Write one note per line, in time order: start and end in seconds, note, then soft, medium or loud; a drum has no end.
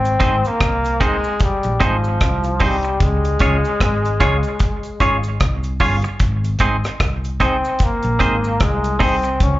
0.00 0.18 G#1 loud
0.00 0.48 C4 loud
0.05 closed hi-hat soft
0.05 cabasa soft
0.20 0.43 G#1 medium
0.20 0.35 C4 medium
0.20 0.35 D#4 medium
0.20 0.36 G#4 medium
0.20 0.36 C5 medium
0.20 kick loud
0.20 closed hi-hat medium
0.20 cabasa medium
0.44 1.05 A#3 loud
0.44 closed hi-hat soft
0.44 cabasa medium
0.60 1.20 C2 medium
0.60 kick loud
0.60 cross-stick loud
0.60 closed hi-hat medium
0.60 cabasa medium
0.85 closed hi-hat medium
0.85 cabasa soft
1.00 1.42 G#3 loud
1.00 1.16 C4 medium
1.00 1.16 D#4 medium
1.00 1.16 G#4 medium
1.00 1.16 C5 medium
1.00 kick medium
1.00 closed hi-hat medium
1.00 cabasa soft
1.24 cabasa medium
1.40 1.84 G3 medium
1.40 kick loud
1.40 closed hi-hat medium
1.40 cabasa medium
1.63 1.79 A#1 medium
1.63 closed hi-hat soft
1.63 cabasa soft
1.80 2.18 G#1 medium
1.80 2.64 F3 medium
1.80 1.95 C4 medium
1.80 1.96 D#4 medium
1.80 1.96 G#4 medium
1.80 1.96 C5 medium
1.80 kick medium
1.80 closed hi-hat medium
1.80 cabasa soft
2.04 cabasa medium
2.21 2.97 C2 medium
2.21 kick loud
2.21 cross-stick medium
2.21 closed hi-hat medium
2.21 cabasa medium
2.44 closed hi-hat soft
2.44 cabasa medium
2.60 3.04 G3 medium
2.60 2.75 C4 medium
2.60 2.76 D#4 medium
2.60 2.76 G#4 medium
2.60 2.76 C5 medium
2.60 kick medium
2.60 open hi-hat medium
2.60 cabasa soft
2.83 muted clean electric guitar stroke soft
2.83 closed hi-hat soft
2.83 cabasa medium
3.00 3.37 C#2 medium
3.00 5.42 G#3 loud
3.00 kick loud
3.00 closed hi-hat medium
3.00 cabasa medium
3.24 closed hi-hat medium
3.24 cabasa soft
3.39 3.62 C#2 medium
3.39 3.56 C#4 medium
3.39 3.56 F4 medium
3.39 3.56 G#4 medium
3.39 3.56 C#5 medium
3.39 kick medium
3.39 closed hi-hat medium
3.39 cabasa medium
3.64 closed hi-hat soft
3.64 cabasa medium
3.80 4.18 G#1 medium
3.80 kick medium
3.80 cross-stick loud
3.80 closed hi-hat medium
3.80 cabasa medium
4.05 closed hi-hat soft
4.05 cabasa soft
4.20 4.43 C#2 medium
4.20 4.36 C#4 medium
4.20 4.36 F4 medium
4.20 4.36 G#4 medium
4.20 4.36 C#5 medium
4.20 kick medium
4.20 closed hi-hat medium
4.20 cabasa medium
4.43 closed hi-hat soft
4.43 cabasa medium
4.59 kick loud
4.59 closed hi-hat medium
4.59 cabasa medium
4.83 closed hi-hat soft
4.83 cabasa medium
5.00 5.38 G#1 medium
5.00 5.16 C#4 medium
5.00 5.16 F4 medium
5.00 5.16 G#4 medium
5.00 5.16 C#5 medium
5.00 kick medium
5.00 closed hi-hat medium
5.00 cabasa soft
5.23 closed hi-hat soft
5.23 cabasa medium
5.40 5.78 C2 medium
5.40 kick loud
5.40 cross-stick medium
5.40 closed hi-hat medium
5.40 cabasa medium
5.63 closed hi-hat soft
5.63 cabasa medium
5.80 6.02 G1 medium
5.80 5.95 C#4 medium
5.80 5.96 F4 medium
5.80 5.96 G#4 medium
5.80 5.96 C#5 medium
5.80 kick medium
5.80 open hi-hat medium
5.80 cabasa soft
6.02 muted clean electric guitar stroke medium
6.02 closed hi-hat soft
6.02 cabasa medium
6.20 6.58 G#1 medium
6.20 kick medium
6.20 closed hi-hat medium
6.20 cabasa medium
6.44 closed hi-hat soft
6.44 cabasa soft
6.59 6.82 G#1 medium
6.59 6.75 C4 medium
6.59 6.76 D#4 medium
6.59 6.76 G#4 medium
6.59 6.76 C5 medium
6.59 kick medium
6.59 closed hi-hat medium
6.59 cabasa medium
6.84 cross-stick medium
6.84 closed hi-hat soft
6.84 cabasa medium
7.00 7.60 C2 medium
7.00 kick loud
7.00 cross-stick loud
7.00 closed hi-hat medium
7.00 cabasa medium
7.24 closed hi-hat soft
7.24 cabasa soft
7.40 7.55 C4 medium
7.40 7.85 C4 medium
7.40 7.56 D#4 medium
7.40 7.56 G#4 medium
7.40 7.56 C5 medium
7.40 kick medium
7.40 closed hi-hat medium
7.40 cabasa medium
7.64 cabasa medium
7.79 kick loud
7.79 closed hi-hat medium
7.79 cabasa medium
7.84 8.64 A#3 medium
8.03 8.19 A#1 medium
8.03 closed hi-hat soft
8.03 cabasa medium
8.19 8.57 G#1 medium
8.19 8.35 C4 medium
8.19 8.35 D#4 medium
8.19 8.36 G#4 medium
8.19 8.36 C5 medium
8.19 kick medium
8.19 closed hi-hat medium
8.19 cabasa soft
8.44 cabasa medium
8.60 9.37 C2 medium
8.60 9.04 G#3 medium
8.60 kick loud
8.60 cross-stick medium
8.60 closed hi-hat medium
8.60 cabasa medium
8.84 closed hi-hat medium
8.84 cabasa medium
8.99 9.15 C4 medium
8.99 9.42 C4 medium
8.99 9.15 D#4 medium
8.99 9.15 G#4 medium
8.99 9.16 C5 medium
8.99 kick medium
8.99 open hi-hat medium
8.99 cabasa soft
9.23 muted clean electric guitar stroke soft
9.23 closed hi-hat soft
9.23 cabasa medium
9.40 9.60 C#2 loud
9.40 9.60 C#4 loud
9.40 kick medium
9.40 closed hi-hat medium
9.40 cabasa medium